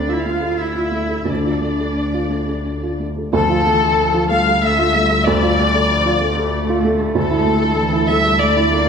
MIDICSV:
0, 0, Header, 1, 5, 480
1, 0, Start_track
1, 0, Key_signature, -1, "minor"
1, 0, Tempo, 678733
1, 912, Time_signature, 3, 2, 24, 8
1, 2359, Tempo, 639659
1, 4759, Tempo, 619835
1, 6583, End_track
2, 0, Start_track
2, 0, Title_t, "Violin section"
2, 0, Program_c, 0, 48
2, 0, Note_on_c, 0, 74, 58
2, 59, Note_on_c, 0, 76, 57
2, 72, Note_off_c, 0, 74, 0
2, 171, Note_on_c, 0, 77, 59
2, 183, Note_off_c, 0, 76, 0
2, 416, Note_off_c, 0, 77, 0
2, 420, Note_on_c, 0, 76, 55
2, 909, Note_off_c, 0, 76, 0
2, 913, Note_on_c, 0, 74, 54
2, 2124, Note_off_c, 0, 74, 0
2, 2358, Note_on_c, 0, 69, 106
2, 3054, Note_off_c, 0, 69, 0
2, 3084, Note_on_c, 0, 77, 100
2, 3324, Note_off_c, 0, 77, 0
2, 3330, Note_on_c, 0, 76, 102
2, 3800, Note_on_c, 0, 74, 104
2, 3807, Note_off_c, 0, 76, 0
2, 5001, Note_off_c, 0, 74, 0
2, 5251, Note_on_c, 0, 69, 98
2, 5932, Note_off_c, 0, 69, 0
2, 5955, Note_on_c, 0, 76, 104
2, 6197, Note_off_c, 0, 76, 0
2, 6199, Note_on_c, 0, 74, 94
2, 6583, Note_off_c, 0, 74, 0
2, 6583, End_track
3, 0, Start_track
3, 0, Title_t, "Upright piano"
3, 0, Program_c, 1, 0
3, 0, Control_c, 1, 64, 127
3, 0, Note_on_c, 1, 38, 55
3, 0, Note_on_c, 1, 57, 43
3, 0, Note_on_c, 1, 65, 43
3, 0, Note_on_c, 1, 69, 40
3, 62, Note_off_c, 1, 65, 0
3, 62, Note_on_c, 1, 65, 41
3, 180, Note_off_c, 1, 57, 0
3, 180, Note_on_c, 1, 57, 38
3, 210, Note_off_c, 1, 69, 0
3, 254, Note_off_c, 1, 65, 0
3, 289, Note_on_c, 1, 69, 40
3, 373, Note_off_c, 1, 57, 0
3, 532, Note_on_c, 1, 65, 37
3, 648, Note_on_c, 1, 57, 36
3, 681, Note_off_c, 1, 69, 0
3, 733, Note_off_c, 1, 65, 0
3, 770, Note_on_c, 1, 69, 34
3, 854, Note_off_c, 1, 57, 0
3, 872, Note_off_c, 1, 38, 0
3, 883, Note_on_c, 1, 38, 43
3, 903, Note_off_c, 1, 69, 0
3, 928, Control_c, 1, 64, 0
3, 1014, Note_on_c, 1, 65, 31
3, 1037, Control_c, 1, 64, 127
3, 1139, Note_on_c, 1, 57, 36
3, 1222, Note_off_c, 1, 65, 0
3, 1265, Note_on_c, 1, 69, 33
3, 1344, Note_off_c, 1, 57, 0
3, 1513, Note_on_c, 1, 65, 35
3, 1623, Note_on_c, 1, 57, 34
3, 1661, Note_off_c, 1, 69, 0
3, 1711, Note_off_c, 1, 65, 0
3, 1748, Note_on_c, 1, 69, 35
3, 1826, Note_off_c, 1, 57, 0
3, 1999, Note_on_c, 1, 65, 33
3, 2118, Note_on_c, 1, 57, 30
3, 2139, Note_off_c, 1, 69, 0
3, 2193, Note_off_c, 1, 65, 0
3, 2239, Note_on_c, 1, 69, 36
3, 2309, Note_off_c, 1, 57, 0
3, 2315, Note_off_c, 1, 38, 0
3, 2354, Note_on_c, 1, 38, 69
3, 2357, Note_off_c, 1, 69, 0
3, 2372, Control_c, 1, 64, 0
3, 2478, Note_on_c, 1, 65, 61
3, 2519, Control_c, 1, 64, 127
3, 2603, Note_on_c, 1, 57, 56
3, 2673, Note_off_c, 1, 65, 0
3, 2715, Note_on_c, 1, 69, 56
3, 2796, Note_off_c, 1, 57, 0
3, 2963, Note_on_c, 1, 65, 50
3, 3088, Note_on_c, 1, 57, 54
3, 3105, Note_off_c, 1, 69, 0
3, 3156, Note_off_c, 1, 65, 0
3, 3210, Note_on_c, 1, 69, 55
3, 3278, Note_off_c, 1, 57, 0
3, 3446, Note_on_c, 1, 65, 57
3, 3566, Note_on_c, 1, 57, 57
3, 3591, Note_off_c, 1, 69, 0
3, 3636, Note_off_c, 1, 65, 0
3, 3683, Note_on_c, 1, 69, 58
3, 3757, Note_off_c, 1, 57, 0
3, 3771, Note_off_c, 1, 38, 0
3, 3810, Note_on_c, 1, 38, 74
3, 3818, Control_c, 1, 64, 0
3, 3875, Note_off_c, 1, 69, 0
3, 3927, Note_on_c, 1, 65, 56
3, 3957, Control_c, 1, 64, 127
3, 4052, Note_on_c, 1, 57, 53
3, 4117, Note_off_c, 1, 65, 0
3, 4160, Note_on_c, 1, 69, 55
3, 4239, Note_off_c, 1, 57, 0
3, 4400, Note_on_c, 1, 65, 56
3, 4516, Note_on_c, 1, 57, 50
3, 4543, Note_off_c, 1, 69, 0
3, 4592, Note_off_c, 1, 65, 0
3, 4639, Note_on_c, 1, 69, 58
3, 4709, Note_off_c, 1, 57, 0
3, 4882, Note_on_c, 1, 65, 56
3, 5001, Note_on_c, 1, 57, 54
3, 5026, Note_off_c, 1, 69, 0
3, 5075, Note_off_c, 1, 65, 0
3, 5124, Note_on_c, 1, 69, 57
3, 5194, Note_off_c, 1, 57, 0
3, 5215, Note_off_c, 1, 38, 0
3, 5236, Note_on_c, 1, 38, 65
3, 5243, Note_off_c, 1, 69, 0
3, 5257, Control_c, 1, 64, 0
3, 5356, Note_on_c, 1, 64, 57
3, 5384, Control_c, 1, 64, 127
3, 5481, Note_on_c, 1, 57, 57
3, 5550, Note_off_c, 1, 64, 0
3, 5596, Note_on_c, 1, 69, 55
3, 5672, Note_off_c, 1, 57, 0
3, 5836, Note_on_c, 1, 64, 56
3, 5969, Note_on_c, 1, 57, 57
3, 5981, Note_off_c, 1, 69, 0
3, 6030, Note_off_c, 1, 64, 0
3, 6085, Note_on_c, 1, 69, 59
3, 6156, Note_off_c, 1, 57, 0
3, 6331, Note_on_c, 1, 64, 56
3, 6444, Note_on_c, 1, 57, 53
3, 6465, Note_off_c, 1, 69, 0
3, 6516, Note_off_c, 1, 64, 0
3, 6583, Note_off_c, 1, 38, 0
3, 6583, Note_off_c, 1, 57, 0
3, 6583, End_track
4, 0, Start_track
4, 0, Title_t, "Cello"
4, 0, Program_c, 2, 42
4, 0, Note_on_c, 2, 62, 72
4, 91, Note_on_c, 2, 64, 64
4, 102, Note_off_c, 2, 62, 0
4, 196, Note_on_c, 2, 65, 70
4, 207, Note_off_c, 2, 64, 0
4, 433, Note_on_c, 2, 64, 67
4, 443, Note_off_c, 2, 65, 0
4, 916, Note_off_c, 2, 64, 0
4, 922, Note_on_c, 2, 62, 55
4, 2104, Note_off_c, 2, 62, 0
4, 2359, Note_on_c, 2, 53, 68
4, 2595, Note_on_c, 2, 52, 67
4, 2606, Note_off_c, 2, 53, 0
4, 2844, Note_on_c, 2, 53, 71
4, 2855, Note_off_c, 2, 52, 0
4, 3075, Note_on_c, 2, 55, 77
4, 3086, Note_off_c, 2, 53, 0
4, 3321, Note_on_c, 2, 57, 70
4, 3332, Note_off_c, 2, 55, 0
4, 3569, Note_on_c, 2, 55, 69
4, 3580, Note_off_c, 2, 57, 0
4, 4285, Note_on_c, 2, 53, 69
4, 4296, Note_off_c, 2, 55, 0
4, 4511, Note_on_c, 2, 57, 78
4, 4522, Note_off_c, 2, 53, 0
4, 5708, Note_off_c, 2, 57, 0
4, 5713, Note_on_c, 2, 52, 79
4, 5967, Note_on_c, 2, 55, 77
4, 5979, Note_off_c, 2, 52, 0
4, 6206, Note_on_c, 2, 57, 71
4, 6218, Note_off_c, 2, 55, 0
4, 6442, Note_off_c, 2, 57, 0
4, 6447, Note_on_c, 2, 58, 66
4, 6583, Note_off_c, 2, 58, 0
4, 6583, End_track
5, 0, Start_track
5, 0, Title_t, "Double bass"
5, 0, Program_c, 3, 43
5, 0, Note_on_c, 3, 38, 66
5, 883, Note_off_c, 3, 38, 0
5, 914, Note_on_c, 3, 38, 47
5, 2331, Note_off_c, 3, 38, 0
5, 2356, Note_on_c, 3, 38, 74
5, 5210, Note_off_c, 3, 38, 0
5, 5249, Note_on_c, 3, 38, 78
5, 6583, Note_off_c, 3, 38, 0
5, 6583, End_track
0, 0, End_of_file